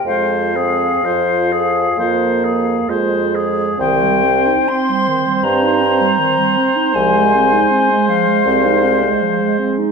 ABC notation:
X:1
M:4/4
L:1/16
Q:1/4=78
K:Fm
V:1 name="Flute"
f12 z4 | [K:Cm] g4 c'4 b8 | a6 f8 z2 |]
V:2 name="Oboe"
c2 A2 c2 A2 c2 A2 c2 A2 | [K:Cm] c16- | c16 |]
V:3 name="Clarinet"
F2 A2 F2 A2 F2 A2 F2 A2 | [K:Cm] E, G, C E C G, E, G, C E C G, E, G, C E | F, A, C E C A, F, A, C E C A, F, A, C E |]
V:4 name="French horn" clef=bass
A,2 C2 F,4 B,4 A,4 | [K:Cm] C16 | A,16 |]
V:5 name="Bassoon" clef=bass
F,,4 F,,4 F,,4 F,,4 | [K:Cm] C,,4 z4 G,,4 z4 | C,,4 z4 C,,4 z4 |]